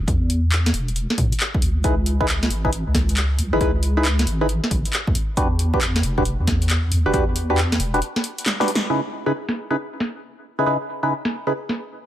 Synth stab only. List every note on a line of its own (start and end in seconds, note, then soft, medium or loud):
1.84 1.95 D#4 medium
1.84 1.95 E4 medium
1.84 1.95 G#4 medium
1.84 1.95 B4 medium
2.21 2.26 D#4 loud
2.21 2.26 E4 medium
2.21 2.26 G#4 medium
2.21 2.26 B4 loud
2.65 2.70 D#4 medium
2.65 2.70 E4 medium
2.65 2.70 G#4 medium
2.65 2.70 B4 medium
3.53 3.60 D#4 medium
3.53 3.60 E4 medium
3.53 3.60 G#4 medium
3.53 3.60 B4 medium
3.61 3.71 D#4 medium
3.61 3.71 E4 medium
3.61 3.71 G#4 medium
3.61 3.71 B4 loud
3.97 4.08 D#4 medium
3.97 4.08 E4 medium
3.97 4.08 G#4 medium
3.97 4.08 B4 medium
4.41 4.47 D#4 medium
4.41 4.47 E4 medium
4.41 4.47 G#4 medium
4.41 4.47 B4 medium
5.37 5.48 D4 medium
5.37 5.48 F#4 medium
5.37 5.48 G4 medium
5.37 5.48 B4 medium
5.74 5.79 D4 loud
5.74 5.79 F#4 medium
5.74 5.79 G4 medium
5.74 5.79 B4 loud
6.18 6.23 D4 medium
6.18 6.23 F#4 medium
6.18 6.23 G4 medium
6.18 6.23 B4 loud
7.06 7.13 D4 medium
7.06 7.13 F#4 medium
7.06 7.12 G4 medium
7.06 7.12 B4 loud
7.14 7.24 D4 loud
7.14 7.24 F#4 medium
7.14 7.24 G4 medium
7.14 7.24 B4 loud
7.50 7.60 D4 medium
7.50 7.60 F#4 medium
7.50 7.60 G4 medium
7.50 7.60 B4 loud
7.94 8.00 D4 medium
7.94 8.00 F#4 medium
7.94 8.00 G4 medium
7.94 8.00 B4 medium
8.60 8.71 D4 medium
8.60 8.71 F#4 medium
8.60 8.71 G4 medium
8.60 8.71 B4 medium
8.90 9.01 C#3 medium
8.90 9.01 D#4 medium
8.90 9.01 E4 medium
8.90 9.01 G#4 medium
8.90 9.01 B4 medium
9.26 9.32 C#3 loud
9.26 9.32 D#4 medium
9.26 9.32 E4 medium
9.26 9.32 G#4 medium
9.26 9.32 B4 loud
9.71 9.76 C#3 medium
9.71 9.76 D#4 medium
9.71 9.76 E4 medium
9.71 9.76 G#4 medium
9.71 9.76 B4 medium
10.59 10.65 C#3 medium
10.59 10.65 D#4 medium
10.59 10.65 E4 medium
10.59 10.65 G#4 medium
10.59 10.65 B4 loud
10.66 10.77 C#3 medium
10.66 10.77 D#4 medium
10.66 10.77 E4 medium
10.66 10.77 G#4 medium
10.66 10.77 B4 loud
11.03 11.13 C#3 medium
11.03 11.13 D#4 medium
11.03 11.13 E4 medium
11.03 11.13 G#4 medium
11.03 11.13 B4 medium
11.47 11.53 C#3 medium
11.47 11.53 D#4 medium
11.47 11.53 E4 medium
11.47 11.53 G#4 medium
11.47 11.53 B4 medium